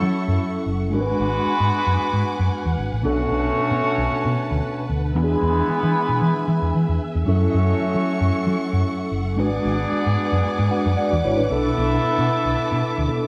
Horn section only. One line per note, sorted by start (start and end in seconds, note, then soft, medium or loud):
0.00 0.63 F#3 medium
0.00 0.63 A3 medium
0.00 0.63 E4 medium
0.00 0.63 A4 medium
0.93 2.74 G#3 medium
0.93 2.74 B3 medium
0.93 2.74 F#4 medium
0.93 2.74 B4 loud
3.04 4.86 A3 medium
3.04 4.86 C#4 medium
3.04 4.86 F#4 medium
3.04 4.86 C#5 medium
5.15 6.97 G#3 medium
5.15 6.97 B3 medium
5.15 6.97 E4 medium
5.15 6.97 B4 loud
7.27 9.08 A3 medium
7.27 9.08 C#4 medium
7.27 9.08 F#4 medium
7.27 9.08 C#5 medium
9.39 11.20 B3 medium
9.39 11.20 D4 medium
9.39 11.20 G#4 medium
9.39 11.20 D5 medium
11.51 13.27 B3 medium
11.51 13.27 E4 medium
11.51 13.27 A4 medium
11.51 13.27 E5 loud